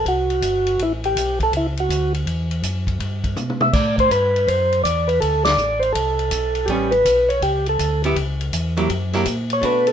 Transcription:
0.05 C2 F#4, kick, ride
0.30 ride
0.42 G1, kick, hi-hat pedal, ride
0.67 ride
0.79 A1 E4, kick, ride
1.04 G4, ride
1.16 B1, kick, hi-hat pedal, ride
1.40 A4, kick, ride
1.52 C#2, kick, ride
1.57 E4
1.77 F#4, ride
1.89 D2, kick, hi-hat pedal, ride
2.14 ride
2.26 E2, kick, ride
2.51 ride
2.63 F#2, kick, hi-hat pedal, ride
2.87 kick, ride
3.00 G2, kick, ride
3.24 kick, ride
3.36 B2, hi-hat pedal, mid tom
3.50 mid tom
3.61 E5, mid tom
3.73 A2 D5, kick, snare, crash
3.98 C5, kick, ride
4.11 G2 B4, kick, hi-hat pedal, ride
4.36 ride
4.47 F#2 C5, kick, ride
4.72 ride
4.84 E2 D5, kick, hi-hat pedal, ride
5.08 B4, ride
5.21 D2 A4, kick, ride
5.45 D5, snare, ride
5.57 A1, hi-hat pedal
5.80 C5, ride
5.93 C2 A4, kick, ride
6.19 ride
6.31 B1, kick, hi-hat pedal, ride
6.55 ride
6.66 A1 G3 B3 C#4 G4, kick, ride
6.91 B4, ride
7.05 B1, kick, hi-hat pedal, ride
7.29 C#5, ride
7.42 C#2 G4, kick, ride
7.66 A4, ride
7.79 D2, kick, hi-hat pedal, ride
8.04 B3 E4 G4, ride
8.16 C#2, kick, ride
8.41 ride
8.53 E2, kick, hi-hat pedal, ride
8.77 F#3 A#3 E4 G4, ride
8.89 F#2, kick, ride
9.13 F#3 A#3 E4 G4, snare, ride
9.26 A#2, kick, hi-hat pedal, ride
9.50 C#5, ride
9.61 B2 A3 D4 F#4 B4, kick, ride
9.87 A4, ride

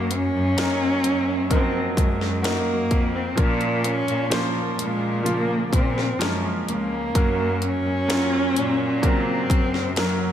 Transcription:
Already playing: F#2 F#3 A#3 D#4 A#4
0.11 C#4, closed hi-hat
0.35 F#2
0.57 F#3 A#3 D#4 A#4, snare, closed hi-hat
1.04 F#2, closed hi-hat
1.50 F3 A#3 C4 D#4 A#4, kick, closed hi-hat
1.56 F#3
1.97 F#2 G#3, kick, closed hi-hat
2.21 snare
2.42 A#3 D#4 F#4 A#4, snare, closed hi-hat
2.91 F2, kick, closed hi-hat
3.15 C4
3.36 A#2 F3 A#3 C#4 A#4, kick, closed hi-hat
3.61 closed hi-hat
3.84 C#4, closed hi-hat
4.08 A#2, closed hi-hat
4.30 F3 A#3 C#4 C5, snare, closed hi-hat
4.78 A#2 G#3, closed hi-hat
5.23 C#3 F3 A#3 F4, closed hi-hat
5.73 A#2 C4, kick, closed hi-hat
5.98 snare
6.19 F#2 F3 G#3 A#3 C#4 A#4, snare, closed hi-hat
6.67 C#2 A#3, closed hi-hat
7.15 F#2 F#3 A#3 C#4 A#4, kick, closed hi-hat
7.62 C#4, closed hi-hat
7.85 F#2
8.08 F#3 A#3 C#4 F4, snare, closed hi-hat
8.55 A#2, closed hi-hat
9.02 C#3 F#3 A#3 C4 A#4, kick, closed hi-hat
9.50 F#2, kick, closed hi-hat
9.74 snare
9.96 F#3 A#3 C#4 A#4, snare, closed hi-hat

